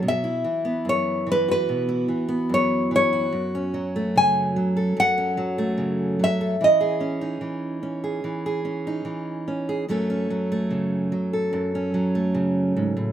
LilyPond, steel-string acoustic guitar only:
\new Staff \with { instrumentName = "Steel-string acoustic guitar" } { \clef bass \time 4/4 \key fis \dorian \tempo 4 = 73 << { r16 e'8 b4 fis'8 e'8 b4 fis'16~ | fis'16 cis'8 a4 a'8 cis'8 a4 a'16 | r16 gis'8 dis'4 gis'8 gis'8 dis'4 gis'16 | <fis a cis' a'>16 cis'8 a4 a'8 cis'8 a4~ a16 | } \\ { b,8 e8 fis,8 e8 b,8 e8 fis,8 e8 | fis,8 fis8 cis8 fis8 fis,8 fis8 cis8 fis8 | e8 cis'8 e8 cis'8 e8 cis'8 e8 cis'8 | fis,8 fis8 cis8 fis8 fis,8 fis8 cis8 gis,16 a,16 | } >> }